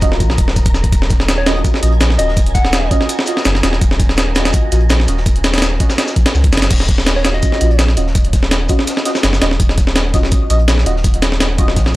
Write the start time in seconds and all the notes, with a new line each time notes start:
Already playing: D#1 A#4 A#5
0.01 C#4 F4 F#4 D#5, kick, closed hi-hat, shaker
0.12 snare
0.20 A#1, kick, closed hi-hat, shaker
0.30 snare
0.38 D#1, kick, closed hi-hat, shaker
0.48 snare
0.56 kick, closed hi-hat, shaker
0.65 kick, closed hi-hat
0.74 D#1, snare, shaker
0.84 kick, closed hi-hat
0.92 D#1 G#5, kick, closed hi-hat, shaker
1.02 snare
1.10 kick, snare, closed hi-hat, shaker
1.20 snare
1.28 snare, closed hi-hat, shaker
1.38 C#5
1.46 C#4 F4 F#4 D#5, snare, closed hi-hat, shaker
1.56 closed hi-hat
1.64 kick, closed hi-hat, shaker
1.74 snare
1.82 A#1 C#4 F4 F#4 D#5, closed hi-hat, shaker
1.92 closed hi-hat
2.00 snare, closed hi-hat, shaker
2.10 snare
2.19 D#1 C#4 F4 F#4 D#5, closed hi-hat, shaker
2.28 snare
2.37 kick, closed hi-hat, shaker
2.46 closed hi-hat
2.54 F#5, kick, snare, closed hi-hat, shaker
2.65 snare
2.73 snare, closed hi-hat, shaker
2.91 C#4 F4 F#4 D#5, kick, closed hi-hat, shaker
3.01 snare
3.09 closed hi-hat, shaker
3.19 snare
3.26 C#4 F4 F#4 D#5, closed hi-hat, shaker
3.37 snare
3.45 F#1, snare, closed hi-hat, shaker
3.55 snare, closed hi-hat
3.63 D#1 C#4 F4 F#4 D#5, snare, closed hi-hat, shaker
3.73 snare
3.81 D#1, kick, closed hi-hat, shaker
3.91 snare
3.99 kick, snare, closed hi-hat, shaker
4.09 snare
4.17 snare, closed hi-hat, shaker
4.35 C#4 F4 F#4 D#5, snare, closed hi-hat, shaker
4.45 snare, closed hi-hat
4.53 kick, closed hi-hat, shaker
4.72 A#1 C#4 F4 F#4 D#5, closed hi-hat, shaker
4.80 closed hi-hat
4.89 snare, closed hi-hat, shaker
5.00 snare
5.08 D#1 C#4 F4 F#4 D#5, closed hi-hat, shaker
5.17 snare
5.26 kick, closed hi-hat, shaker
5.36 closed hi-hat
5.44 snare, closed hi-hat, shaker
5.54 snare, closed hi-hat
5.58 snare, closed hi-hat
5.62 snare, closed hi-hat, shaker
5.80 C#4 F4 F#4 D#5, kick, closed hi-hat, shaker
5.89 snare, shaker
5.98 snare, closed hi-hat, shaker
6.07 snare, shaker
6.16 A#1, kick, closed hi-hat, shaker
6.26 snare, closed hi-hat
6.34 C#2, snare, shaker
6.44 kick, closed hi-hat
6.52 F#1, snare, closed hi-hat, shaker
6.57 snare, closed hi-hat
6.62 snare, closed hi-hat, shaker
6.70 D#1, kick, closed hi-hat, crash, shaker
6.80 snare
6.88 kick, snare, closed hi-hat, shaker
6.98 snare
7.06 snare, closed hi-hat, shaker
7.16 C#5
7.24 C#4 F4 F#4 D#5, snare, closed hi-hat, shaker
7.34 D#5, closed hi-hat
7.42 kick, closed hi-hat, shaker
7.52 snare
7.61 A#1 C#4 F4 F#4 D#5, closed hi-hat, shaker
7.71 closed hi-hat
7.78 snare, closed hi-hat, shaker
7.88 snare
7.97 D#1 C#4 F4 F#4 D#5, closed hi-hat, shaker
8.07 snare
8.15 kick, closed hi-hat, shaker
8.25 closed hi-hat
8.33 kick, snare, closed hi-hat, shaker
8.43 snare
8.51 snare, closed hi-hat, shaker
8.69 C#4 F4 F#4 D#5, kick, closed hi-hat, shaker
8.79 snare
8.87 snare, closed hi-hat, shaker
8.97 snare
9.05 C#4 F4 F#4 D#5, snare, closed hi-hat, shaker
9.15 snare, shaker
9.23 F#1, snare, closed hi-hat, shaker
9.33 snare, shaker
9.42 D#1 C#4 F4 F#4 D#5, snare, closed hi-hat, shaker
9.51 snare
9.60 D#1, kick, closed hi-hat, shaker
9.69 snare
9.78 kick, snare, closed hi-hat, shaker
9.87 snare
9.95 snare, closed hi-hat, shaker
10.14 C#4 F4 F#4 D#5, kick, snare, closed hi-hat, shaker
10.23 snare, closed hi-hat
10.31 kick, closed hi-hat, shaker
10.50 A#1 C#4 F4 F#4 D#5, closed hi-hat, shaker
10.59 closed hi-hat
10.68 snare, closed hi-hat, shaker
10.78 snare
10.86 D#1 C#4 F4 F#4 D#5, closed hi-hat, shaker
10.96 snare
11.04 kick, closed hi-hat, shaker
11.14 closed hi-hat
11.22 snare, closed hi-hat, shaker
11.32 snare
11.40 snare, closed hi-hat, shaker
11.58 C#4 F4 F#4 D#5, kick, closed hi-hat, shaker
11.68 snare
11.76 A#1, kick, snare, closed hi-hat, shaker
11.86 snare